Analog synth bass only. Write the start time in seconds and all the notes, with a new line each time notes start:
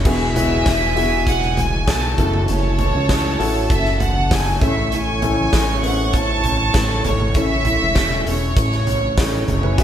0.05 E1
0.66 E1
1.88 B1
2.18 F#1
2.49 F#1
2.95 C#2
3.40 A1
3.70 F#1
4.61 A1
5.53 A1
6.75 A1
7.05 G#1
7.35 A1
7.81 E1
8.26 E1
8.57 A1
9.48 F#1
9.78 E1